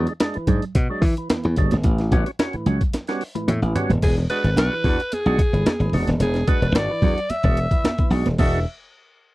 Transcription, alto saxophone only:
4.03 G#4
4.30 B4
4.58 B4
5.13 G#4
6.22 G#4
6.48 B4
6.75 D5
7.30 E5
8.39 E5

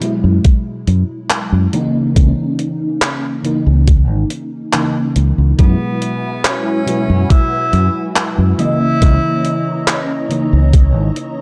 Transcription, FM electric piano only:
Already playing: G#3 E4
0.00 B2 F#3 G#3 E4
1.73 C#3 E3 A#3 D#4
2.14 C#3 E3 A#3 C#4
3.43 C#3 E3 A#3 D#4
4.72 C#3 E3 A#3 D#4
5.57 B2 F#3 G#3 E4
6.86 B2 F#3 G#3 E4
8.58 C#3 E3 A#3 D#5
9.00 C#3 E3 A#3 C#4
10.29 C#3 E3 A#3 D#4

